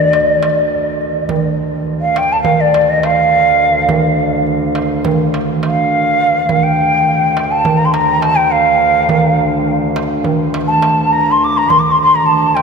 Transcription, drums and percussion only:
0.13 darbuka tek
0.43 darbuka tek
1.01 darbuka ka
1.29 darbuka dum
2.16 darbuka tek
2.44 darbuka dum
2.74 darbuka tek
3.03 darbuka tek
3.61 darbuka ka
3.89 darbuka dum
4.03 darbuka ka
4.19 darbuka ka
4.47 darbuka ka
4.75 darbuka tek
5.05 darbuka dum
5.34 darbuka tek
5.63 darbuka tek
6.49 darbuka dum
7.37 darbuka tek
7.65 darbuka dum
7.94 darbuka tek
8.22 darbuka tek
8.81 darbuka ka
9.09 darbuka dum
9.96 darbuka tek
10.24 darbuka dum
10.54 darbuka tek
10.82 darbuka tek
11.41 darbuka ka
11.70 darbuka dum
12.57 darbuka tek

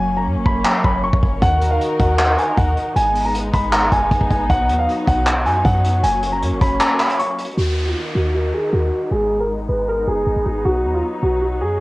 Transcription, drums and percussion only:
0.46 kick
0.65 clap
0.84 kick
1.13 kick
1.23 kick
1.42 kick, closed hi-hat
1.61 closed hi-hat
1.81 closed hi-hat
2.00 kick, closed hi-hat
2.19 clap, closed hi-hat
2.38 closed hi-hat
2.57 kick, closed hi-hat
2.77 closed hi-hat
2.96 closed hi-hat
3.15 open hi-hat
3.35 closed hi-hat
3.53 kick, closed hi-hat
3.73 clap, closed hi-hat
3.92 kick, closed hi-hat
4.11 kick, closed hi-hat
4.21 kick
4.31 kick, closed hi-hat
4.50 kick, closed hi-hat
4.69 closed hi-hat
4.89 closed hi-hat
5.07 kick, closed hi-hat
5.27 clap, closed hi-hat
5.46 closed hi-hat
5.65 kick, closed hi-hat
5.84 closed hi-hat
6.04 closed hi-hat
6.23 closed hi-hat
6.42 closed hi-hat
6.61 kick, closed hi-hat
6.81 clap, closed hi-hat
7.00 clap, closed hi-hat
7.09 closed hi-hat
7.19 closed hi-hat
7.38 closed hi-hat
7.45 closed hi-hat
7.51 closed hi-hat

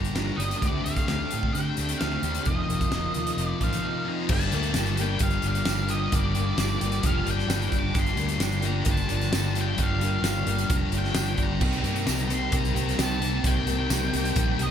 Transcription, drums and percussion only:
0.05 closed hi-hat
0.16 snare, closed hi-hat
0.40 closed hi-hat
0.51 closed hi-hat
0.62 kick, closed hi-hat
0.86 closed hi-hat
0.96 kick, closed hi-hat
1.08 snare, closed hi-hat
1.31 closed hi-hat
1.43 kick
1.55 closed hi-hat
1.77 closed hi-hat
1.89 closed hi-hat
2.01 snare, closed hi-hat
2.23 closed hi-hat
2.35 closed hi-hat
2.45 kick, closed hi-hat
2.70 closed hi-hat
2.81 kick, closed hi-hat
2.92 snare, closed hi-hat
3.14 closed hi-hat
3.27 closed hi-hat
3.38 closed hi-hat
3.61 kick, closed hi-hat
3.73 closed hi-hat
4.29 kick, crash
4.41 closed hi-hat
4.52 closed hi-hat
4.63 closed hi-hat
4.74 snare, closed hi-hat, tambourine
4.86 closed hi-hat
4.97 closed hi-hat
5.19 kick, closed hi-hat
5.30 closed hi-hat
5.42 closed hi-hat
5.55 closed hi-hat
5.65 snare, closed hi-hat, tambourine
5.88 closed hi-hat
6.12 kick, closed hi-hat
6.35 closed hi-hat
6.58 snare, closed hi-hat, tambourine
6.81 closed hi-hat
6.92 closed hi-hat
7.03 kick, closed hi-hat
7.27 closed hi-hat
7.39 snare
7.50 snare, closed hi-hat, tambourine
7.62 closed hi-hat
7.72 kick, closed hi-hat
7.95 kick, closed hi-hat
8.06 closed hi-hat
8.17 closed hi-hat
8.29 closed hi-hat
8.40 snare, closed hi-hat, tambourine
8.52 closed hi-hat
8.62 closed hi-hat
8.85 kick, closed hi-hat
8.97 closed hi-hat
9.09 closed hi-hat
9.21 snare, closed hi-hat
9.33 snare, closed hi-hat, tambourine
9.55 closed hi-hat
9.78 kick, closed hi-hat
10.01 closed hi-hat
10.24 snare, closed hi-hat, tambourine
10.47 closed hi-hat
10.58 closed hi-hat
10.70 kick, closed hi-hat
10.92 closed hi-hat
11.04 snare
11.15 snare, closed hi-hat, tambourine
11.26 closed hi-hat
11.37 kick, closed hi-hat
11.61 kick, crash
11.73 closed hi-hat
11.84 closed hi-hat
11.96 closed hi-hat
12.07 snare, closed hi-hat, tambourine
12.19 closed hi-hat
12.30 closed hi-hat
12.52 kick, closed hi-hat
12.65 closed hi-hat
12.76 closed hi-hat
12.89 snare, closed hi-hat
12.99 snare, closed hi-hat, tambourine
13.22 closed hi-hat
13.44 kick, closed hi-hat
13.67 closed hi-hat
13.90 snare, closed hi-hat, tambourine
14.14 closed hi-hat
14.25 closed hi-hat
14.36 kick, closed hi-hat
14.59 closed hi-hat

